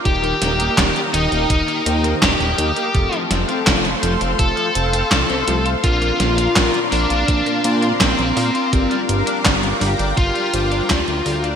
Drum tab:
HH |xxxxxxxxxxxxxxxx|xxxxxxxxxxxxxxxx|xxxxxxoxxxxxxxox|xxxxxxoxxxxxxxox|
CP |----x-------x---|----x-------x---|----x-------x---|----x-------x---|
SD |--o-o-------o---|--o-o-------o---|--o-o-------o---|----o-------o---|
BD |o---o---o---o---|o---o---o---o---|o---o---o---o---|o---o---o---o---|